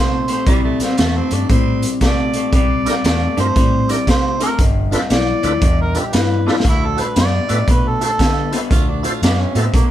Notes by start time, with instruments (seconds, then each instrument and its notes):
Already playing: clean electric guitar C3 A3, fingered electric bass C3
0.00 harmonica C5
0.28 clean electric guitar C3 A3, closed hi-hat
0.32 harmonica C5
0.46 fingered electric bass C2, clean electric guitar C3 G3, tenor saxophone G3, kick, closed hi-hat
0.64 tenor saxophone A3
0.80 tenor saxophone C4, snare, closed hi-hat
0.97 fingered electric bass E2, clean electric guitar C3 A3, tenor saxophone A3, snare, closed hi-hat
1.16 tenor saxophone C4
1.31 fingered electric bass G2, clean electric guitar C3 A3, tenor saxophone D4, closed hi-hat
1.49 fingered electric bass A2, clean electric guitar C3 G3, tenor saxophone C4, kick, closed hi-hat
1.82 closed hi-hat
2.01 fingered electric bass C3, clean electric guitar C3 A3, harmonica D5, kick, snare, closed hi-hat
2.33 clean electric guitar C3 A3, closed hi-hat
2.53 fingered electric bass C2, clean electric guitar C3 G3, harmonica D5, kick, closed hi-hat
2.85 tonewheel organ D4 E4 G4 A#4, snare, closed hi-hat
3.04 fingered electric bass E2, clean electric guitar C3 A3, snare, closed hi-hat
3.37 fingered electric bass G2, clean electric guitar C3 A3, tonewheel organ D4 E4 G4 A#4, harmonica C5, closed hi-hat
3.56 fingered electric bass A2, clean electric guitar C3 G3, kick, closed hi-hat
3.88 tonewheel organ D4 E4 G4 A#4, harmonica D5, closed hi-hat
4.07 fingered electric bass C3, clean electric guitar C3 A3, harmonica C5, kick, snare, closed hi-hat
4.40 clean electric guitar C3 A3, tonewheel organ D4 E4 G4 A#4, harmonica A#4, closed hi-hat
4.59 fingered electric bass G1, clean electric guitar G2 D3, kick, closed hi-hat
4.91 tonewheel organ D4 F4 A4 B4, snare, closed hi-hat
5.10 fingered electric bass B1, clean electric guitar G2 E3, harmonica D5, snare, closed hi-hat
5.43 fingered electric bass D2, clean electric guitar G2 E3, tonewheel organ D4 F4 A4 B4, closed hi-hat
5.62 fingered electric bass E2, clean electric guitar G2 D3, kick, closed hi-hat
5.81 harmonica A#4
5.94 tonewheel organ D4 F4 A4 B4, closed hi-hat
5.99 harmonica G4
6.13 clean electric guitar G2 E3, fingered electric bass G2, harmonica B4, snare, closed hi-hat
6.46 clean electric guitar G2 E3, tonewheel organ D4 F4 A4 B4, snare
6.60 snare
6.64 fingered electric bass D2, clean electric guitar D3 A3, kick, closed hi-hat
6.69 harmonica E4
6.86 harmonica A4
6.97 tonewheel organ E4 F#4 A4 C5, closed hi-hat
7.02 harmonica B4
7.16 fingered electric bass F#2, clean electric guitar D3 B3, harmonica D5, snare, closed hi-hat
7.48 fingered electric bass A2, clean electric guitar D3 B3, tonewheel organ E4 F#4 A4 B4, closed hi-hat
7.68 fingered electric bass B2, clean electric guitar D3 A3, harmonica B4, kick, closed hi-hat
7.88 harmonica A4
8.01 tonewheel organ E4 F#4 A4 C5, harmonica A4, closed hi-hat
8.19 fingered electric bass D3, clean electric guitar D3 B3, kick, snare, closed hi-hat
8.51 clean electric guitar D3 B3, tonewheel organ E4 F#4 A4 C5, closed hi-hat
8.71 fingered electric bass D2, clean electric guitar D3 A3, tenor saxophone F4, kick, closed hi-hat
8.89 tenor saxophone D4
9.03 tonewheel organ E4 F#4 A4 C5, tenor saxophone F4, closed hi-hat
9.22 fingered electric bass F#2, clean electric guitar D3 B3, tenor saxophone D4, snare, closed hi-hat
9.39 tenor saxophone C#4
9.55 fingered electric bass A2, clean electric guitar D3 B3, tenor saxophone C4, tonewheel organ E4 F#4 A4 C5, closed hi-hat
9.74 fingered electric bass B2, clean electric guitar D3 A3, tenor saxophone A#3, kick, closed hi-hat